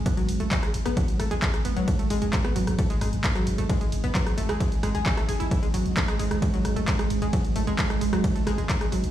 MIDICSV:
0, 0, Header, 1, 5, 480
1, 0, Start_track
1, 0, Tempo, 454545
1, 61, Time_signature, 4, 2, 24, 8
1, 9619, End_track
2, 0, Start_track
2, 0, Title_t, "Synth arpeggio sound"
2, 0, Program_c, 0, 84
2, 61, Note_on_c, 0, 59, 84
2, 151, Note_off_c, 0, 59, 0
2, 183, Note_on_c, 0, 54, 79
2, 241, Note_off_c, 0, 54, 0
2, 423, Note_on_c, 0, 57, 80
2, 458, Note_off_c, 0, 57, 0
2, 542, Note_on_c, 0, 56, 102
2, 601, Note_off_c, 0, 56, 0
2, 663, Note_on_c, 0, 56, 82
2, 721, Note_off_c, 0, 56, 0
2, 903, Note_on_c, 0, 59, 76
2, 990, Note_off_c, 0, 59, 0
2, 1021, Note_on_c, 0, 54, 85
2, 1081, Note_off_c, 0, 54, 0
2, 1262, Note_on_c, 0, 57, 79
2, 1297, Note_off_c, 0, 57, 0
2, 1383, Note_on_c, 0, 56, 99
2, 1442, Note_off_c, 0, 56, 0
2, 1502, Note_on_c, 0, 56, 78
2, 1561, Note_off_c, 0, 56, 0
2, 1742, Note_on_c, 0, 59, 75
2, 1831, Note_off_c, 0, 59, 0
2, 1864, Note_on_c, 0, 54, 80
2, 1922, Note_off_c, 0, 54, 0
2, 2103, Note_on_c, 0, 57, 78
2, 2138, Note_off_c, 0, 57, 0
2, 2222, Note_on_c, 0, 56, 104
2, 2282, Note_off_c, 0, 56, 0
2, 2343, Note_on_c, 0, 56, 77
2, 2401, Note_off_c, 0, 56, 0
2, 2583, Note_on_c, 0, 59, 81
2, 2670, Note_off_c, 0, 59, 0
2, 2701, Note_on_c, 0, 54, 81
2, 2761, Note_off_c, 0, 54, 0
2, 2942, Note_on_c, 0, 57, 81
2, 2978, Note_off_c, 0, 57, 0
2, 3062, Note_on_c, 0, 56, 102
2, 3121, Note_off_c, 0, 56, 0
2, 3181, Note_on_c, 0, 56, 77
2, 3241, Note_off_c, 0, 56, 0
2, 3422, Note_on_c, 0, 59, 80
2, 3511, Note_off_c, 0, 59, 0
2, 3542, Note_on_c, 0, 54, 78
2, 3601, Note_off_c, 0, 54, 0
2, 3783, Note_on_c, 0, 57, 76
2, 3818, Note_off_c, 0, 57, 0
2, 3901, Note_on_c, 0, 56, 104
2, 3961, Note_off_c, 0, 56, 0
2, 4023, Note_on_c, 0, 56, 80
2, 4081, Note_off_c, 0, 56, 0
2, 4263, Note_on_c, 0, 59, 79
2, 4351, Note_off_c, 0, 59, 0
2, 4381, Note_on_c, 0, 54, 85
2, 4441, Note_off_c, 0, 54, 0
2, 4620, Note_on_c, 0, 57, 82
2, 4657, Note_off_c, 0, 57, 0
2, 4742, Note_on_c, 0, 56, 101
2, 4801, Note_off_c, 0, 56, 0
2, 4861, Note_on_c, 0, 56, 84
2, 4921, Note_off_c, 0, 56, 0
2, 5101, Note_on_c, 0, 56, 102
2, 5137, Note_off_c, 0, 56, 0
2, 5224, Note_on_c, 0, 68, 76
2, 5311, Note_off_c, 0, 68, 0
2, 5463, Note_on_c, 0, 57, 106
2, 5521, Note_off_c, 0, 57, 0
2, 5581, Note_on_c, 0, 68, 75
2, 5641, Note_off_c, 0, 68, 0
2, 5702, Note_on_c, 0, 64, 80
2, 5737, Note_off_c, 0, 64, 0
2, 5942, Note_on_c, 0, 56, 80
2, 6001, Note_off_c, 0, 56, 0
2, 6060, Note_on_c, 0, 54, 80
2, 6121, Note_off_c, 0, 54, 0
2, 6301, Note_on_c, 0, 57, 85
2, 6337, Note_off_c, 0, 57, 0
2, 6422, Note_on_c, 0, 56, 106
2, 6481, Note_off_c, 0, 56, 0
2, 6541, Note_on_c, 0, 56, 79
2, 6601, Note_off_c, 0, 56, 0
2, 6780, Note_on_c, 0, 56, 86
2, 6841, Note_off_c, 0, 56, 0
2, 6902, Note_on_c, 0, 54, 80
2, 6961, Note_off_c, 0, 54, 0
2, 7140, Note_on_c, 0, 57, 76
2, 7177, Note_off_c, 0, 57, 0
2, 7260, Note_on_c, 0, 56, 100
2, 7320, Note_off_c, 0, 56, 0
2, 7382, Note_on_c, 0, 56, 77
2, 7441, Note_off_c, 0, 56, 0
2, 7623, Note_on_c, 0, 56, 76
2, 7682, Note_off_c, 0, 56, 0
2, 7742, Note_on_c, 0, 54, 88
2, 7802, Note_off_c, 0, 54, 0
2, 7982, Note_on_c, 0, 57, 81
2, 8018, Note_off_c, 0, 57, 0
2, 8103, Note_on_c, 0, 56, 104
2, 8161, Note_off_c, 0, 56, 0
2, 8221, Note_on_c, 0, 56, 83
2, 8281, Note_off_c, 0, 56, 0
2, 8461, Note_on_c, 0, 56, 78
2, 8521, Note_off_c, 0, 56, 0
2, 8581, Note_on_c, 0, 54, 77
2, 8641, Note_off_c, 0, 54, 0
2, 8822, Note_on_c, 0, 57, 79
2, 8857, Note_off_c, 0, 57, 0
2, 8940, Note_on_c, 0, 56, 102
2, 9001, Note_off_c, 0, 56, 0
2, 9061, Note_on_c, 0, 56, 79
2, 9120, Note_off_c, 0, 56, 0
2, 9301, Note_on_c, 0, 56, 78
2, 9361, Note_off_c, 0, 56, 0
2, 9421, Note_on_c, 0, 54, 77
2, 9481, Note_off_c, 0, 54, 0
2, 9619, End_track
3, 0, Start_track
3, 0, Title_t, "Ambient pad"
3, 0, Program_c, 1, 92
3, 0, Note_on_c, 1, 44, 80
3, 0, Note_on_c, 1, 56, 80
3, 9619, Note_off_c, 1, 44, 0
3, 9619, Note_off_c, 1, 56, 0
3, 9619, End_track
4, 0, Start_track
4, 0, Title_t, "808-style bass"
4, 0, Program_c, 2, 38
4, 303, Note_on_c, 2, 32, 98
4, 418, Note_off_c, 2, 32, 0
4, 424, Note_on_c, 2, 32, 83
4, 540, Note_off_c, 2, 32, 0
4, 783, Note_on_c, 2, 32, 97
4, 899, Note_off_c, 2, 32, 0
4, 905, Note_on_c, 2, 32, 83
4, 1020, Note_off_c, 2, 32, 0
4, 1263, Note_on_c, 2, 32, 101
4, 1378, Note_off_c, 2, 32, 0
4, 1384, Note_on_c, 2, 32, 82
4, 1500, Note_off_c, 2, 32, 0
4, 1741, Note_on_c, 2, 32, 105
4, 1857, Note_off_c, 2, 32, 0
4, 1863, Note_on_c, 2, 32, 83
4, 1979, Note_off_c, 2, 32, 0
4, 2222, Note_on_c, 2, 32, 100
4, 2337, Note_off_c, 2, 32, 0
4, 2343, Note_on_c, 2, 32, 86
4, 2459, Note_off_c, 2, 32, 0
4, 2702, Note_on_c, 2, 32, 102
4, 2816, Note_off_c, 2, 32, 0
4, 2822, Note_on_c, 2, 32, 83
4, 2939, Note_off_c, 2, 32, 0
4, 3181, Note_on_c, 2, 32, 106
4, 3298, Note_off_c, 2, 32, 0
4, 3304, Note_on_c, 2, 32, 80
4, 3420, Note_off_c, 2, 32, 0
4, 3662, Note_on_c, 2, 32, 105
4, 3776, Note_off_c, 2, 32, 0
4, 3783, Note_on_c, 2, 32, 80
4, 3899, Note_off_c, 2, 32, 0
4, 4141, Note_on_c, 2, 32, 100
4, 4255, Note_off_c, 2, 32, 0
4, 4261, Note_on_c, 2, 32, 87
4, 4378, Note_off_c, 2, 32, 0
4, 4621, Note_on_c, 2, 32, 103
4, 4737, Note_off_c, 2, 32, 0
4, 4743, Note_on_c, 2, 32, 80
4, 4859, Note_off_c, 2, 32, 0
4, 5102, Note_on_c, 2, 32, 100
4, 5216, Note_off_c, 2, 32, 0
4, 5222, Note_on_c, 2, 32, 78
4, 5339, Note_off_c, 2, 32, 0
4, 5582, Note_on_c, 2, 32, 102
4, 5697, Note_off_c, 2, 32, 0
4, 5704, Note_on_c, 2, 32, 82
4, 5820, Note_off_c, 2, 32, 0
4, 6062, Note_on_c, 2, 32, 102
4, 6176, Note_off_c, 2, 32, 0
4, 6183, Note_on_c, 2, 32, 82
4, 6299, Note_off_c, 2, 32, 0
4, 6541, Note_on_c, 2, 32, 99
4, 6655, Note_off_c, 2, 32, 0
4, 6661, Note_on_c, 2, 32, 81
4, 6778, Note_off_c, 2, 32, 0
4, 7020, Note_on_c, 2, 32, 102
4, 7135, Note_off_c, 2, 32, 0
4, 7142, Note_on_c, 2, 32, 82
4, 7259, Note_off_c, 2, 32, 0
4, 7501, Note_on_c, 2, 32, 102
4, 7616, Note_off_c, 2, 32, 0
4, 7622, Note_on_c, 2, 32, 86
4, 7739, Note_off_c, 2, 32, 0
4, 7980, Note_on_c, 2, 32, 98
4, 8095, Note_off_c, 2, 32, 0
4, 8101, Note_on_c, 2, 32, 85
4, 8218, Note_off_c, 2, 32, 0
4, 8460, Note_on_c, 2, 32, 101
4, 8575, Note_off_c, 2, 32, 0
4, 8581, Note_on_c, 2, 32, 81
4, 8698, Note_off_c, 2, 32, 0
4, 8940, Note_on_c, 2, 32, 100
4, 9054, Note_off_c, 2, 32, 0
4, 9060, Note_on_c, 2, 32, 78
4, 9178, Note_off_c, 2, 32, 0
4, 9420, Note_on_c, 2, 32, 104
4, 9535, Note_off_c, 2, 32, 0
4, 9541, Note_on_c, 2, 32, 84
4, 9619, Note_off_c, 2, 32, 0
4, 9619, End_track
5, 0, Start_track
5, 0, Title_t, "Drums"
5, 62, Note_on_c, 9, 36, 127
5, 63, Note_on_c, 9, 42, 101
5, 63, Note_on_c, 9, 51, 67
5, 167, Note_off_c, 9, 36, 0
5, 168, Note_off_c, 9, 42, 0
5, 168, Note_off_c, 9, 51, 0
5, 183, Note_on_c, 9, 42, 57
5, 289, Note_off_c, 9, 42, 0
5, 302, Note_on_c, 9, 46, 118
5, 408, Note_off_c, 9, 46, 0
5, 423, Note_on_c, 9, 42, 54
5, 529, Note_off_c, 9, 42, 0
5, 542, Note_on_c, 9, 36, 127
5, 542, Note_on_c, 9, 39, 123
5, 542, Note_on_c, 9, 42, 99
5, 542, Note_on_c, 9, 51, 65
5, 648, Note_off_c, 9, 36, 0
5, 648, Note_off_c, 9, 39, 0
5, 648, Note_off_c, 9, 42, 0
5, 648, Note_off_c, 9, 51, 0
5, 664, Note_on_c, 9, 37, 92
5, 664, Note_on_c, 9, 42, 55
5, 769, Note_off_c, 9, 37, 0
5, 769, Note_off_c, 9, 42, 0
5, 783, Note_on_c, 9, 46, 114
5, 888, Note_off_c, 9, 46, 0
5, 905, Note_on_c, 9, 37, 89
5, 905, Note_on_c, 9, 42, 57
5, 1010, Note_off_c, 9, 37, 0
5, 1010, Note_off_c, 9, 42, 0
5, 1022, Note_on_c, 9, 36, 127
5, 1023, Note_on_c, 9, 42, 101
5, 1023, Note_on_c, 9, 51, 65
5, 1128, Note_off_c, 9, 36, 0
5, 1128, Note_off_c, 9, 42, 0
5, 1128, Note_off_c, 9, 51, 0
5, 1144, Note_on_c, 9, 42, 57
5, 1249, Note_off_c, 9, 42, 0
5, 1263, Note_on_c, 9, 37, 79
5, 1263, Note_on_c, 9, 46, 108
5, 1369, Note_off_c, 9, 37, 0
5, 1369, Note_off_c, 9, 46, 0
5, 1384, Note_on_c, 9, 42, 55
5, 1490, Note_off_c, 9, 42, 0
5, 1502, Note_on_c, 9, 36, 126
5, 1503, Note_on_c, 9, 39, 123
5, 1503, Note_on_c, 9, 42, 102
5, 1503, Note_on_c, 9, 51, 68
5, 1608, Note_off_c, 9, 36, 0
5, 1608, Note_off_c, 9, 39, 0
5, 1608, Note_off_c, 9, 42, 0
5, 1608, Note_off_c, 9, 51, 0
5, 1624, Note_on_c, 9, 37, 80
5, 1624, Note_on_c, 9, 42, 56
5, 1729, Note_off_c, 9, 37, 0
5, 1729, Note_off_c, 9, 42, 0
5, 1742, Note_on_c, 9, 46, 109
5, 1847, Note_off_c, 9, 46, 0
5, 1864, Note_on_c, 9, 42, 56
5, 1970, Note_off_c, 9, 42, 0
5, 1982, Note_on_c, 9, 36, 127
5, 1982, Note_on_c, 9, 42, 95
5, 1982, Note_on_c, 9, 51, 65
5, 2087, Note_off_c, 9, 36, 0
5, 2088, Note_off_c, 9, 42, 0
5, 2088, Note_off_c, 9, 51, 0
5, 2103, Note_on_c, 9, 42, 55
5, 2209, Note_off_c, 9, 42, 0
5, 2221, Note_on_c, 9, 46, 118
5, 2327, Note_off_c, 9, 46, 0
5, 2342, Note_on_c, 9, 42, 55
5, 2448, Note_off_c, 9, 42, 0
5, 2461, Note_on_c, 9, 39, 120
5, 2461, Note_on_c, 9, 42, 99
5, 2461, Note_on_c, 9, 51, 65
5, 2462, Note_on_c, 9, 36, 127
5, 2567, Note_off_c, 9, 36, 0
5, 2567, Note_off_c, 9, 39, 0
5, 2567, Note_off_c, 9, 42, 0
5, 2567, Note_off_c, 9, 51, 0
5, 2582, Note_on_c, 9, 37, 92
5, 2582, Note_on_c, 9, 42, 55
5, 2688, Note_off_c, 9, 37, 0
5, 2688, Note_off_c, 9, 42, 0
5, 2702, Note_on_c, 9, 46, 114
5, 2807, Note_off_c, 9, 46, 0
5, 2823, Note_on_c, 9, 37, 93
5, 2823, Note_on_c, 9, 42, 57
5, 2929, Note_off_c, 9, 37, 0
5, 2929, Note_off_c, 9, 42, 0
5, 2941, Note_on_c, 9, 42, 100
5, 2941, Note_on_c, 9, 51, 64
5, 2942, Note_on_c, 9, 36, 127
5, 3047, Note_off_c, 9, 36, 0
5, 3047, Note_off_c, 9, 42, 0
5, 3047, Note_off_c, 9, 51, 0
5, 3063, Note_on_c, 9, 42, 55
5, 3169, Note_off_c, 9, 42, 0
5, 3182, Note_on_c, 9, 37, 80
5, 3182, Note_on_c, 9, 46, 109
5, 3288, Note_off_c, 9, 37, 0
5, 3288, Note_off_c, 9, 46, 0
5, 3304, Note_on_c, 9, 42, 52
5, 3410, Note_off_c, 9, 42, 0
5, 3421, Note_on_c, 9, 36, 122
5, 3422, Note_on_c, 9, 39, 123
5, 3422, Note_on_c, 9, 42, 100
5, 3422, Note_on_c, 9, 51, 67
5, 3527, Note_off_c, 9, 36, 0
5, 3527, Note_off_c, 9, 39, 0
5, 3527, Note_off_c, 9, 42, 0
5, 3527, Note_off_c, 9, 51, 0
5, 3543, Note_on_c, 9, 37, 82
5, 3543, Note_on_c, 9, 42, 56
5, 3649, Note_off_c, 9, 37, 0
5, 3649, Note_off_c, 9, 42, 0
5, 3662, Note_on_c, 9, 46, 110
5, 3768, Note_off_c, 9, 46, 0
5, 3784, Note_on_c, 9, 42, 54
5, 3889, Note_off_c, 9, 42, 0
5, 3901, Note_on_c, 9, 36, 127
5, 3902, Note_on_c, 9, 42, 92
5, 3902, Note_on_c, 9, 51, 67
5, 4007, Note_off_c, 9, 36, 0
5, 4008, Note_off_c, 9, 42, 0
5, 4008, Note_off_c, 9, 51, 0
5, 4023, Note_on_c, 9, 42, 54
5, 4129, Note_off_c, 9, 42, 0
5, 4142, Note_on_c, 9, 46, 113
5, 4248, Note_off_c, 9, 46, 0
5, 4264, Note_on_c, 9, 42, 52
5, 4369, Note_off_c, 9, 42, 0
5, 4381, Note_on_c, 9, 36, 127
5, 4382, Note_on_c, 9, 39, 113
5, 4382, Note_on_c, 9, 42, 91
5, 4382, Note_on_c, 9, 51, 67
5, 4487, Note_off_c, 9, 36, 0
5, 4488, Note_off_c, 9, 39, 0
5, 4488, Note_off_c, 9, 42, 0
5, 4488, Note_off_c, 9, 51, 0
5, 4504, Note_on_c, 9, 37, 95
5, 4504, Note_on_c, 9, 42, 52
5, 4610, Note_off_c, 9, 37, 0
5, 4610, Note_off_c, 9, 42, 0
5, 4622, Note_on_c, 9, 46, 114
5, 4728, Note_off_c, 9, 46, 0
5, 4744, Note_on_c, 9, 37, 98
5, 4744, Note_on_c, 9, 42, 53
5, 4850, Note_off_c, 9, 37, 0
5, 4850, Note_off_c, 9, 42, 0
5, 4861, Note_on_c, 9, 36, 127
5, 4863, Note_on_c, 9, 42, 89
5, 4863, Note_on_c, 9, 51, 64
5, 4967, Note_off_c, 9, 36, 0
5, 4968, Note_off_c, 9, 42, 0
5, 4968, Note_off_c, 9, 51, 0
5, 4984, Note_on_c, 9, 42, 53
5, 5090, Note_off_c, 9, 42, 0
5, 5102, Note_on_c, 9, 37, 84
5, 5102, Note_on_c, 9, 46, 107
5, 5208, Note_off_c, 9, 37, 0
5, 5208, Note_off_c, 9, 46, 0
5, 5224, Note_on_c, 9, 42, 52
5, 5329, Note_off_c, 9, 42, 0
5, 5341, Note_on_c, 9, 36, 125
5, 5343, Note_on_c, 9, 39, 121
5, 5343, Note_on_c, 9, 46, 69
5, 5343, Note_on_c, 9, 51, 68
5, 5447, Note_off_c, 9, 36, 0
5, 5449, Note_off_c, 9, 39, 0
5, 5449, Note_off_c, 9, 46, 0
5, 5449, Note_off_c, 9, 51, 0
5, 5464, Note_on_c, 9, 37, 83
5, 5464, Note_on_c, 9, 42, 51
5, 5570, Note_off_c, 9, 37, 0
5, 5570, Note_off_c, 9, 42, 0
5, 5583, Note_on_c, 9, 46, 108
5, 5688, Note_off_c, 9, 46, 0
5, 5704, Note_on_c, 9, 42, 51
5, 5810, Note_off_c, 9, 42, 0
5, 5821, Note_on_c, 9, 36, 124
5, 5822, Note_on_c, 9, 42, 86
5, 5822, Note_on_c, 9, 51, 68
5, 5927, Note_off_c, 9, 36, 0
5, 5928, Note_off_c, 9, 42, 0
5, 5928, Note_off_c, 9, 51, 0
5, 5944, Note_on_c, 9, 42, 51
5, 6049, Note_off_c, 9, 42, 0
5, 6062, Note_on_c, 9, 46, 111
5, 6167, Note_off_c, 9, 46, 0
5, 6184, Note_on_c, 9, 42, 48
5, 6290, Note_off_c, 9, 42, 0
5, 6302, Note_on_c, 9, 36, 127
5, 6303, Note_on_c, 9, 39, 121
5, 6303, Note_on_c, 9, 42, 90
5, 6303, Note_on_c, 9, 51, 69
5, 6407, Note_off_c, 9, 36, 0
5, 6409, Note_off_c, 9, 39, 0
5, 6409, Note_off_c, 9, 42, 0
5, 6409, Note_off_c, 9, 51, 0
5, 6423, Note_on_c, 9, 37, 98
5, 6423, Note_on_c, 9, 42, 53
5, 6529, Note_off_c, 9, 37, 0
5, 6529, Note_off_c, 9, 42, 0
5, 6542, Note_on_c, 9, 46, 108
5, 6647, Note_off_c, 9, 46, 0
5, 6663, Note_on_c, 9, 37, 100
5, 6663, Note_on_c, 9, 42, 52
5, 6769, Note_off_c, 9, 37, 0
5, 6769, Note_off_c, 9, 42, 0
5, 6782, Note_on_c, 9, 36, 123
5, 6782, Note_on_c, 9, 42, 89
5, 6782, Note_on_c, 9, 51, 69
5, 6887, Note_off_c, 9, 36, 0
5, 6888, Note_off_c, 9, 42, 0
5, 6888, Note_off_c, 9, 51, 0
5, 6904, Note_on_c, 9, 42, 53
5, 7009, Note_off_c, 9, 42, 0
5, 7022, Note_on_c, 9, 37, 91
5, 7022, Note_on_c, 9, 46, 106
5, 7127, Note_off_c, 9, 37, 0
5, 7127, Note_off_c, 9, 46, 0
5, 7144, Note_on_c, 9, 42, 50
5, 7249, Note_off_c, 9, 42, 0
5, 7261, Note_on_c, 9, 39, 121
5, 7261, Note_on_c, 9, 42, 90
5, 7261, Note_on_c, 9, 51, 73
5, 7262, Note_on_c, 9, 36, 119
5, 7367, Note_off_c, 9, 39, 0
5, 7367, Note_off_c, 9, 42, 0
5, 7367, Note_off_c, 9, 51, 0
5, 7368, Note_off_c, 9, 36, 0
5, 7383, Note_on_c, 9, 37, 87
5, 7383, Note_on_c, 9, 42, 53
5, 7489, Note_off_c, 9, 37, 0
5, 7489, Note_off_c, 9, 42, 0
5, 7501, Note_on_c, 9, 46, 105
5, 7607, Note_off_c, 9, 46, 0
5, 7623, Note_on_c, 9, 42, 50
5, 7729, Note_off_c, 9, 42, 0
5, 7741, Note_on_c, 9, 42, 89
5, 7741, Note_on_c, 9, 51, 69
5, 7742, Note_on_c, 9, 36, 122
5, 7847, Note_off_c, 9, 42, 0
5, 7847, Note_off_c, 9, 51, 0
5, 7848, Note_off_c, 9, 36, 0
5, 7862, Note_on_c, 9, 42, 51
5, 7968, Note_off_c, 9, 42, 0
5, 7980, Note_on_c, 9, 46, 108
5, 8086, Note_off_c, 9, 46, 0
5, 8103, Note_on_c, 9, 42, 49
5, 8208, Note_off_c, 9, 42, 0
5, 8222, Note_on_c, 9, 36, 118
5, 8222, Note_on_c, 9, 39, 122
5, 8222, Note_on_c, 9, 42, 89
5, 8222, Note_on_c, 9, 51, 74
5, 8327, Note_off_c, 9, 36, 0
5, 8327, Note_off_c, 9, 39, 0
5, 8327, Note_off_c, 9, 42, 0
5, 8327, Note_off_c, 9, 51, 0
5, 8343, Note_on_c, 9, 37, 96
5, 8343, Note_on_c, 9, 42, 50
5, 8449, Note_off_c, 9, 37, 0
5, 8449, Note_off_c, 9, 42, 0
5, 8462, Note_on_c, 9, 46, 105
5, 8568, Note_off_c, 9, 46, 0
5, 8583, Note_on_c, 9, 37, 99
5, 8583, Note_on_c, 9, 42, 52
5, 8689, Note_off_c, 9, 37, 0
5, 8689, Note_off_c, 9, 42, 0
5, 8702, Note_on_c, 9, 36, 123
5, 8702, Note_on_c, 9, 42, 88
5, 8702, Note_on_c, 9, 51, 74
5, 8807, Note_off_c, 9, 36, 0
5, 8807, Note_off_c, 9, 42, 0
5, 8807, Note_off_c, 9, 51, 0
5, 8824, Note_on_c, 9, 42, 53
5, 8930, Note_off_c, 9, 42, 0
5, 8943, Note_on_c, 9, 37, 88
5, 8943, Note_on_c, 9, 46, 102
5, 9049, Note_off_c, 9, 37, 0
5, 9049, Note_off_c, 9, 46, 0
5, 9063, Note_on_c, 9, 42, 50
5, 9169, Note_off_c, 9, 42, 0
5, 9182, Note_on_c, 9, 36, 116
5, 9182, Note_on_c, 9, 39, 123
5, 9182, Note_on_c, 9, 42, 91
5, 9182, Note_on_c, 9, 51, 75
5, 9287, Note_off_c, 9, 36, 0
5, 9288, Note_off_c, 9, 39, 0
5, 9288, Note_off_c, 9, 42, 0
5, 9288, Note_off_c, 9, 51, 0
5, 9304, Note_on_c, 9, 37, 89
5, 9304, Note_on_c, 9, 42, 52
5, 9410, Note_off_c, 9, 37, 0
5, 9410, Note_off_c, 9, 42, 0
5, 9423, Note_on_c, 9, 46, 103
5, 9528, Note_off_c, 9, 46, 0
5, 9543, Note_on_c, 9, 42, 51
5, 9619, Note_off_c, 9, 42, 0
5, 9619, End_track
0, 0, End_of_file